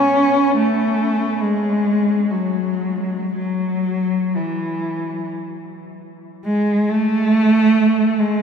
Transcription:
0, 0, Header, 1, 2, 480
1, 0, Start_track
1, 0, Tempo, 500000
1, 8083, End_track
2, 0, Start_track
2, 0, Title_t, "Cello"
2, 0, Program_c, 0, 42
2, 0, Note_on_c, 0, 61, 79
2, 539, Note_on_c, 0, 57, 76
2, 547, Note_off_c, 0, 61, 0
2, 1334, Note_off_c, 0, 57, 0
2, 1354, Note_on_c, 0, 56, 69
2, 2215, Note_on_c, 0, 54, 57
2, 2239, Note_off_c, 0, 56, 0
2, 3185, Note_off_c, 0, 54, 0
2, 3196, Note_on_c, 0, 54, 63
2, 4173, Note_off_c, 0, 54, 0
2, 4182, Note_on_c, 0, 52, 45
2, 5153, Note_off_c, 0, 52, 0
2, 6192, Note_on_c, 0, 56, 79
2, 6584, Note_off_c, 0, 56, 0
2, 6616, Note_on_c, 0, 57, 89
2, 7867, Note_off_c, 0, 57, 0
2, 7875, Note_on_c, 0, 56, 83
2, 8083, Note_off_c, 0, 56, 0
2, 8083, End_track
0, 0, End_of_file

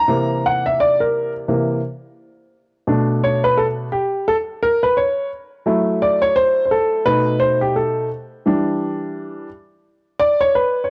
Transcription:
0, 0, Header, 1, 2, 480
1, 0, Start_track
1, 0, Key_signature, 2, "minor"
1, 0, Tempo, 697674
1, 57, Time_signature, 4, 2, 24, 8
1, 7499, End_track
2, 0, Start_track
2, 0, Title_t, "Grand piano"
2, 0, Program_c, 0, 0
2, 0, Note_on_c, 0, 82, 105
2, 52, Note_on_c, 0, 48, 58
2, 55, Note_on_c, 0, 52, 51
2, 60, Note_on_c, 0, 58, 65
2, 316, Note_off_c, 0, 82, 0
2, 316, Note_on_c, 0, 78, 89
2, 452, Note_off_c, 0, 78, 0
2, 453, Note_on_c, 0, 76, 84
2, 547, Note_off_c, 0, 76, 0
2, 551, Note_on_c, 0, 74, 93
2, 690, Note_off_c, 0, 74, 0
2, 690, Note_on_c, 0, 70, 66
2, 908, Note_off_c, 0, 70, 0
2, 1008, Note_off_c, 0, 48, 0
2, 1009, Note_off_c, 0, 52, 0
2, 1011, Note_off_c, 0, 58, 0
2, 1018, Note_on_c, 0, 48, 51
2, 1019, Note_on_c, 0, 52, 49
2, 1021, Note_on_c, 0, 58, 57
2, 1234, Note_off_c, 0, 48, 0
2, 1234, Note_off_c, 0, 52, 0
2, 1235, Note_off_c, 0, 58, 0
2, 1975, Note_on_c, 0, 47, 59
2, 1978, Note_on_c, 0, 57, 54
2, 1985, Note_on_c, 0, 62, 64
2, 2226, Note_on_c, 0, 73, 89
2, 2354, Note_off_c, 0, 73, 0
2, 2366, Note_on_c, 0, 71, 90
2, 2460, Note_on_c, 0, 69, 85
2, 2464, Note_off_c, 0, 71, 0
2, 2513, Note_off_c, 0, 69, 0
2, 2669, Note_off_c, 0, 47, 0
2, 2670, Note_off_c, 0, 57, 0
2, 2674, Note_off_c, 0, 62, 0
2, 2698, Note_on_c, 0, 67, 79
2, 2921, Note_off_c, 0, 67, 0
2, 2944, Note_on_c, 0, 69, 95
2, 2997, Note_off_c, 0, 69, 0
2, 3183, Note_on_c, 0, 70, 93
2, 3324, Note_on_c, 0, 71, 83
2, 3326, Note_off_c, 0, 70, 0
2, 3420, Note_on_c, 0, 73, 78
2, 3422, Note_off_c, 0, 71, 0
2, 3642, Note_off_c, 0, 73, 0
2, 3894, Note_on_c, 0, 54, 58
2, 3898, Note_on_c, 0, 57, 59
2, 3904, Note_on_c, 0, 64, 69
2, 4142, Note_on_c, 0, 74, 87
2, 4277, Note_on_c, 0, 73, 95
2, 4286, Note_off_c, 0, 74, 0
2, 4374, Note_on_c, 0, 72, 100
2, 4379, Note_off_c, 0, 73, 0
2, 4568, Note_off_c, 0, 72, 0
2, 4578, Note_on_c, 0, 72, 54
2, 4618, Note_off_c, 0, 72, 0
2, 4618, Note_on_c, 0, 69, 87
2, 4828, Note_off_c, 0, 54, 0
2, 4830, Note_off_c, 0, 57, 0
2, 4833, Note_off_c, 0, 64, 0
2, 4855, Note_on_c, 0, 71, 101
2, 4858, Note_on_c, 0, 47, 51
2, 4863, Note_on_c, 0, 57, 54
2, 4865, Note_off_c, 0, 69, 0
2, 4866, Note_on_c, 0, 63, 69
2, 5079, Note_off_c, 0, 71, 0
2, 5089, Note_on_c, 0, 72, 91
2, 5225, Note_off_c, 0, 72, 0
2, 5237, Note_on_c, 0, 67, 81
2, 5339, Note_off_c, 0, 67, 0
2, 5339, Note_on_c, 0, 69, 76
2, 5550, Note_off_c, 0, 47, 0
2, 5553, Note_off_c, 0, 57, 0
2, 5554, Note_off_c, 0, 63, 0
2, 5561, Note_off_c, 0, 69, 0
2, 5818, Note_on_c, 0, 52, 65
2, 5822, Note_on_c, 0, 55, 58
2, 5826, Note_on_c, 0, 62, 69
2, 6510, Note_off_c, 0, 52, 0
2, 6512, Note_off_c, 0, 55, 0
2, 6514, Note_off_c, 0, 62, 0
2, 7015, Note_on_c, 0, 74, 104
2, 7159, Note_on_c, 0, 73, 97
2, 7162, Note_off_c, 0, 74, 0
2, 7260, Note_off_c, 0, 73, 0
2, 7260, Note_on_c, 0, 71, 86
2, 7458, Note_on_c, 0, 73, 60
2, 7465, Note_off_c, 0, 71, 0
2, 7498, Note_off_c, 0, 73, 0
2, 7499, End_track
0, 0, End_of_file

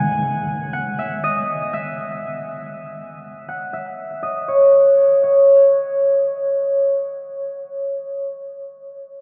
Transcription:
0, 0, Header, 1, 2, 480
1, 0, Start_track
1, 0, Key_signature, 4, "minor"
1, 0, Tempo, 500000
1, 1183, Time_signature, 4, 2, 24, 8
1, 8844, End_track
2, 0, Start_track
2, 0, Title_t, "Harp"
2, 0, Program_c, 0, 46
2, 0, Note_on_c, 0, 78, 76
2, 0, Note_on_c, 0, 80, 85
2, 697, Note_off_c, 0, 78, 0
2, 701, Note_on_c, 0, 78, 75
2, 946, Note_on_c, 0, 76, 80
2, 1184, Note_off_c, 0, 80, 0
2, 1186, Note_on_c, 0, 75, 96
2, 1244, Note_off_c, 0, 76, 0
2, 1663, Note_on_c, 0, 76, 86
2, 1721, Note_off_c, 0, 75, 0
2, 2245, Note_off_c, 0, 78, 0
2, 3317, Note_off_c, 0, 76, 0
2, 3346, Note_on_c, 0, 78, 75
2, 3582, Note_on_c, 0, 76, 77
2, 4058, Note_on_c, 0, 75, 81
2, 4115, Note_off_c, 0, 76, 0
2, 4303, Note_on_c, 0, 73, 77
2, 4889, Note_off_c, 0, 78, 0
2, 5020, Note_off_c, 0, 73, 0
2, 5024, Note_on_c, 0, 73, 80
2, 5770, Note_off_c, 0, 75, 0
2, 6859, Note_off_c, 0, 73, 0
2, 8844, End_track
0, 0, End_of_file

